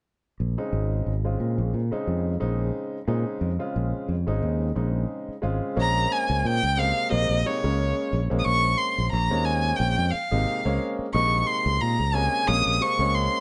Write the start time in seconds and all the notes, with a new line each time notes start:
0.40 A#1
0.58 C#3 G#3 C4 D#4
0.73 G#1
1.06 G#1
1.24 C#3 G#3 C4 F4
1.40 A#2
1.58 A#1
1.74 A#2
1.91 C#3 G#3 C4 D#4, muted fingered electric bass stroke
2.07 F2
2.40 A#1 C#3 G#3 C4 D#4
3.07 A#2 C#3 G#3 C4 D#4
3.41 F2
3.59 C#3 G#3 C4 F4
3.76 A#1
4.09 F2
4.26 G#1 C#3 G#3 C4 D#4
4.42 D#2
4.75 A#1 C#3 G#3 C4 D#4
5.28 muted fingered electric bass stroke
5.42 G#1 C#3 G#3 C4 F4
5.62 muted fingered electric bass stroke
5.76 A#1 G#3 A#3 C4 C#4
5.81 A#5
6.12 G#5
6.30 C#2
6.38 G#5
6.45 A#2 G5
6.63 C#2
6.77 C3 G#3 A#3 C4 F5
7.10 A#1 C3 G#3 A#3 C4 D#5
7.29 A#1
7.45 C3 G#3 A#3 D#4 C#5
7.64 C#2 C#3 G#3 A#3 C#4
8.13 A#1
8.30 A#1 G#3 A#3 C4 C#4
8.39 D#6
8.45 A#1 C#6
8.78 C6
8.98 A#1
9.12 A#1 A#5
9.30 D#2 G#3 A#3 C4 C#4
9.44 G#5
9.76 A#1 G5
9.98 F2
10.11 F5, muted fingered electric bass stroke
10.31 G#1 C3 G#3 A#3 D#4
10.65 C#2 G#3 A#3 C4 C#4
10.99 muted fingered electric bass stroke
11.14 A#1 C3 G#3 A#3 D#4 C#6
11.47 C6
11.66 C#2
11.81 A#2 A#5
12.00 C#2
12.13 C3 G#3 A#3 C#4 G#5
12.47 A#1 C3 G#3 A#3 C#4 D#6
12.66 A#1
12.81 C3 G#3 A#3 C4 C#6
12.99 C#2 G#3 A#3 C4 C#4
13.14 C6